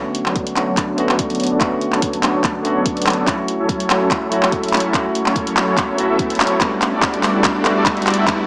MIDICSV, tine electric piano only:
0, 0, Header, 1, 2, 480
1, 0, Start_track
1, 0, Key_signature, 2, "minor"
1, 0, Tempo, 416667
1, 1851, Time_signature, 4, 2, 24, 8
1, 9755, End_track
2, 0, Start_track
2, 0, Title_t, "Tine electric piano"
2, 0, Program_c, 0, 4
2, 0, Note_on_c, 0, 50, 95
2, 0, Note_on_c, 0, 57, 87
2, 0, Note_on_c, 0, 59, 85
2, 0, Note_on_c, 0, 61, 83
2, 0, Note_on_c, 0, 66, 97
2, 173, Control_c, 0, 64, 127
2, 612, Note_off_c, 0, 50, 0
2, 618, Note_off_c, 0, 57, 0
2, 623, Note_off_c, 0, 59, 0
2, 630, Note_off_c, 0, 61, 0
2, 636, Note_off_c, 0, 66, 0
2, 639, Note_on_c, 0, 50, 79
2, 645, Note_on_c, 0, 57, 72
2, 651, Note_on_c, 0, 59, 73
2, 656, Note_on_c, 0, 61, 73
2, 662, Note_on_c, 0, 66, 83
2, 1092, Note_off_c, 0, 50, 0
2, 1101, Note_off_c, 0, 57, 0
2, 1104, Note_off_c, 0, 59, 0
2, 1105, Note_on_c, 0, 50, 89
2, 1107, Note_off_c, 0, 61, 0
2, 1110, Note_off_c, 0, 66, 0
2, 1116, Note_on_c, 0, 57, 82
2, 1128, Note_on_c, 0, 59, 85
2, 1140, Note_on_c, 0, 61, 80
2, 1150, Note_on_c, 0, 66, 101
2, 1811, Note_off_c, 0, 50, 0
2, 1817, Note_off_c, 0, 57, 0
2, 1822, Note_off_c, 0, 59, 0
2, 1824, Note_on_c, 0, 50, 94
2, 1828, Note_off_c, 0, 61, 0
2, 1834, Note_off_c, 0, 66, 0
2, 1837, Note_on_c, 0, 57, 88
2, 1847, Note_on_c, 0, 59, 85
2, 1859, Note_on_c, 0, 61, 88
2, 1871, Note_on_c, 0, 66, 98
2, 2530, Note_off_c, 0, 50, 0
2, 2537, Note_off_c, 0, 57, 0
2, 2542, Note_off_c, 0, 59, 0
2, 2548, Note_off_c, 0, 61, 0
2, 2554, Note_off_c, 0, 66, 0
2, 2559, Note_on_c, 0, 50, 84
2, 2565, Note_on_c, 0, 57, 71
2, 2571, Note_on_c, 0, 59, 75
2, 2576, Note_on_c, 0, 61, 74
2, 2583, Note_on_c, 0, 66, 85
2, 3014, Note_off_c, 0, 50, 0
2, 3021, Note_off_c, 0, 57, 0
2, 3024, Note_off_c, 0, 59, 0
2, 3027, Note_off_c, 0, 61, 0
2, 3028, Note_on_c, 0, 50, 90
2, 3030, Note_off_c, 0, 66, 0
2, 3040, Note_on_c, 0, 57, 83
2, 3050, Note_on_c, 0, 59, 80
2, 3062, Note_on_c, 0, 61, 82
2, 3075, Note_on_c, 0, 66, 104
2, 3732, Note_off_c, 0, 50, 0
2, 3739, Note_off_c, 0, 57, 0
2, 3744, Note_off_c, 0, 59, 0
2, 3747, Note_on_c, 0, 54, 96
2, 3750, Note_off_c, 0, 61, 0
2, 3756, Note_off_c, 0, 66, 0
2, 3758, Note_on_c, 0, 57, 90
2, 3771, Note_on_c, 0, 61, 84
2, 3782, Note_on_c, 0, 64, 84
2, 3786, Control_c, 0, 64, 0
2, 3794, Note_on_c, 0, 66, 99
2, 4008, Control_c, 0, 64, 127
2, 4452, Note_off_c, 0, 54, 0
2, 4458, Note_off_c, 0, 57, 0
2, 4464, Note_off_c, 0, 61, 0
2, 4470, Note_off_c, 0, 64, 0
2, 4476, Note_off_c, 0, 66, 0
2, 4482, Note_on_c, 0, 54, 79
2, 4487, Note_on_c, 0, 57, 75
2, 4492, Note_on_c, 0, 61, 72
2, 4498, Note_on_c, 0, 64, 71
2, 4505, Note_on_c, 0, 66, 89
2, 4934, Note_off_c, 0, 54, 0
2, 4942, Note_off_c, 0, 57, 0
2, 4945, Note_off_c, 0, 61, 0
2, 4947, Note_off_c, 0, 64, 0
2, 4948, Note_on_c, 0, 54, 89
2, 4951, Note_off_c, 0, 66, 0
2, 4959, Note_on_c, 0, 57, 85
2, 4971, Note_on_c, 0, 61, 89
2, 4982, Note_on_c, 0, 64, 80
2, 4994, Note_on_c, 0, 66, 98
2, 5653, Note_off_c, 0, 54, 0
2, 5658, Note_off_c, 0, 57, 0
2, 5664, Note_off_c, 0, 61, 0
2, 5667, Note_on_c, 0, 54, 94
2, 5669, Note_off_c, 0, 64, 0
2, 5675, Note_off_c, 0, 66, 0
2, 5678, Note_on_c, 0, 57, 87
2, 5690, Note_on_c, 0, 61, 90
2, 5701, Note_on_c, 0, 64, 89
2, 5713, Note_on_c, 0, 66, 105
2, 6372, Note_off_c, 0, 54, 0
2, 6377, Note_off_c, 0, 57, 0
2, 6384, Note_off_c, 0, 61, 0
2, 6389, Note_off_c, 0, 64, 0
2, 6395, Note_off_c, 0, 66, 0
2, 6400, Note_on_c, 0, 54, 80
2, 6404, Note_on_c, 0, 57, 72
2, 6411, Note_on_c, 0, 61, 75
2, 6417, Note_on_c, 0, 64, 74
2, 6422, Note_on_c, 0, 66, 94
2, 6855, Note_off_c, 0, 54, 0
2, 6861, Note_off_c, 0, 57, 0
2, 6864, Note_off_c, 0, 61, 0
2, 6867, Note_off_c, 0, 64, 0
2, 6868, Note_on_c, 0, 54, 91
2, 6870, Note_off_c, 0, 66, 0
2, 6880, Note_on_c, 0, 57, 89
2, 6892, Note_on_c, 0, 61, 82
2, 6904, Note_on_c, 0, 64, 82
2, 6914, Note_on_c, 0, 66, 101
2, 7573, Note_off_c, 0, 54, 0
2, 7579, Note_off_c, 0, 57, 0
2, 7584, Note_off_c, 0, 61, 0
2, 7588, Note_on_c, 0, 55, 95
2, 7591, Note_off_c, 0, 64, 0
2, 7596, Note_off_c, 0, 66, 0
2, 7600, Note_on_c, 0, 57, 88
2, 7610, Note_on_c, 0, 59, 90
2, 7622, Note_on_c, 0, 62, 85
2, 7627, Control_c, 0, 64, 0
2, 7633, Note_on_c, 0, 66, 105
2, 7807, Control_c, 0, 64, 127
2, 8293, Note_off_c, 0, 55, 0
2, 8298, Note_off_c, 0, 57, 0
2, 8303, Note_off_c, 0, 59, 0
2, 8310, Note_off_c, 0, 62, 0
2, 8315, Note_off_c, 0, 66, 0
2, 8321, Note_on_c, 0, 55, 79
2, 8327, Note_on_c, 0, 57, 72
2, 8331, Note_on_c, 0, 59, 74
2, 8338, Note_on_c, 0, 62, 74
2, 8345, Note_on_c, 0, 66, 87
2, 8774, Note_off_c, 0, 55, 0
2, 8782, Note_off_c, 0, 57, 0
2, 8784, Note_off_c, 0, 59, 0
2, 8787, Note_off_c, 0, 62, 0
2, 8788, Note_on_c, 0, 55, 90
2, 8791, Note_off_c, 0, 66, 0
2, 8798, Note_on_c, 0, 57, 83
2, 8810, Note_on_c, 0, 59, 83
2, 8822, Note_on_c, 0, 62, 84
2, 8833, Note_on_c, 0, 66, 104
2, 9492, Note_off_c, 0, 55, 0
2, 9497, Note_off_c, 0, 57, 0
2, 9504, Note_off_c, 0, 59, 0
2, 9507, Note_on_c, 0, 55, 94
2, 9509, Note_off_c, 0, 62, 0
2, 9515, Note_off_c, 0, 66, 0
2, 9519, Note_on_c, 0, 57, 89
2, 9530, Note_on_c, 0, 59, 86
2, 9543, Note_on_c, 0, 62, 88
2, 9553, Note_on_c, 0, 66, 101
2, 9755, Note_off_c, 0, 55, 0
2, 9755, Note_off_c, 0, 57, 0
2, 9755, Note_off_c, 0, 59, 0
2, 9755, Note_off_c, 0, 62, 0
2, 9755, Note_off_c, 0, 66, 0
2, 9755, End_track
0, 0, End_of_file